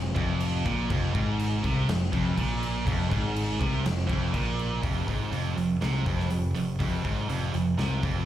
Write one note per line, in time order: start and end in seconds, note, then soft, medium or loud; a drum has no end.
0.00 0.14 F1 medium
0.00 0.11 F2 medium
0.15 0.62 F1 loud
0.15 0.64 F2 medium
0.15 kick loud
0.15 crash medium
0.40 crash medium
0.65 0.88 A#1 medium
0.65 0.89 A#2 loud
0.65 kick loud
0.65 crash medium
0.89 1.13 F1 loud
0.89 1.13 F2 loud
0.89 kick loud
0.89 crash medium
1.14 1.60 G#1 loud
1.14 1.62 G#2 loud
1.14 kick loud
1.14 crash medium
1.40 crash medium
1.63 1.87 C2 medium
1.63 1.87 C3 medium
1.63 kick loud
1.63 crash medium
1.88 2.11 F1 medium
1.88 2.08 F2 medium
1.88 snare loud
1.88 crash medium
2.11 2.36 F1 loud
2.11 2.35 F2 medium
2.11 kick loud
2.11 crash medium
2.36 2.83 A#1 medium
2.36 2.85 A#2 loud
2.36 kick loud
2.36 crash medium
2.63 crash medium
2.86 3.09 F1 loud
2.86 3.09 F2 loud
2.86 kick loud
2.86 crash medium
3.10 3.57 G#1 loud
3.10 3.58 G#2 loud
3.10 kick loud
3.10 crash medium
3.36 crash medium
3.59 3.83 C2 medium
3.59 3.83 C3 medium
3.59 kick loud
3.59 crash medium
3.83 4.07 F1 medium
3.83 4.04 F2 medium
3.83 snare loud
3.83 crash medium
3.98 snare soft
4.08 4.32 F1 loud
4.08 4.32 F2 medium
4.08 kick loud
4.08 crash medium
4.33 4.79 A#1 medium
4.33 4.82 A#2 loud
4.33 kick loud
4.33 crash medium
4.59 crash medium
4.82 5.06 F1 loud
4.82 5.06 F2 loud
4.82 kick loud
4.82 open hi-hat medium
5.07 5.30 G#1 medium
5.07 5.31 G#2 medium
5.07 kick medium
5.07 open hi-hat soft
5.32 5.55 F1 medium
5.32 5.56 F2 loud
5.32 open hi-hat medium
5.57 5.79 F1 medium
5.57 5.76 F2 medium
5.57 open hi-hat soft
5.81 6.04 C2 medium
5.81 6.05 C3 loud
5.81 snare loud
5.81 open hi-hat medium
6.05 6.29 F1 medium
6.05 6.29 F2 medium
6.05 kick loud
6.05 open hi-hat medium
6.19 snare soft
6.30 6.54 F1 medium
6.30 6.50 F2 medium
6.30 open hi-hat medium
6.55 6.78 F1 medium
6.55 6.75 F2 medium
6.55 open hi-hat soft
6.79 7.03 F1 loud
6.79 7.03 F2 medium
6.79 kick loud
6.79 open hi-hat medium
7.04 7.27 G#1 medium
7.04 7.28 G#2 loud
7.04 kick loud
7.04 open hi-hat soft
7.29 7.52 F1 medium
7.29 7.52 F2 medium
7.29 open hi-hat medium
7.53 7.76 F1 medium
7.53 7.73 F2 medium
7.53 open hi-hat medium
7.78 8.01 C2 medium
7.78 8.02 C3 loud
7.78 snare medium
7.78 open hi-hat medium
8.03 8.25 F1 medium
8.03 8.25 F2 medium
8.03 kick loud
8.03 open hi-hat medium